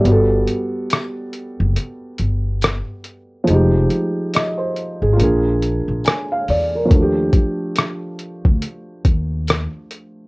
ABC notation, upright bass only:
X:1
M:4/4
L:1/16
Q:"Swing 16ths" 1/4=70
K:Glyd
V:1 name="Upright bass" clef=bass
G,,,2 z4 z F,,, z2 G,,,3 z3 | =F,,,2 z4 z _A,,, _B,,,3 B,,, z2 E,,2 | _E,,2 z4 z D,, z2 E,,3 z3 |]